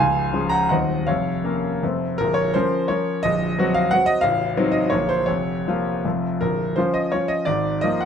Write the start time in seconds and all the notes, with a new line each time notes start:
Already playing: F5 G#5
0.00 C#1 C#2
0.33 F3 C#4 G#4
0.49 F#5 A#5
0.69 D#1 D#2 F#3 C4 C5 D#5 F#5
1.07 F1 F2 C#5 F5
1.44 A#3 C#4 A#4
1.83 F1 F2 A3 C4 C5
2.18 A#0 A#1 A#4
2.34 C#5
2.54 F3 C#4 A#4 C5
2.88 F3 C#4 A#4 C#5
3.23 A#0 A#1 D#5
3.59 F#3 C4 F#4
3.74 F5
3.91 F#3 C4 F#4 F#5
4.06 D#5
4.21 A0 A1 F5
4.57 F#3 C4 D#4
4.72 D#5
4.90 A#0 A#1 F3 A#3 F4 C#5
5.09 C5
5.26 F1 F2 C#5
5.68 F3 A#3 F4
6.05 F1 F2 F3 A3 F4
6.41 A#0 A#1 A#4
6.76 F3 C#4 F4 C5
6.94 D#5
7.12 F3 C#4 F4 C#5
7.28 D#5
7.45 G#1 G#2 D5
7.81 F3 A#3 F4 D#5
8.01 F#5